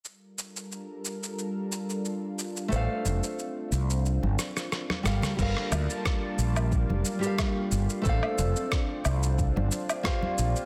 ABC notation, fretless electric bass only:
X:1
M:4/4
L:1/16
Q:"Swing 16ths" 1/4=90
K:Gm
V:1 name="Fretless electric bass" clef=bass
z16 | A,,, z F,,, z3 C,,3 G,,, z4 G,,, z | G,,, z D,, z3 B,,,3 F,,, z4 G,,, z | A,,, z F,,, z3 C,,3 G,,, z4 B,,, z |]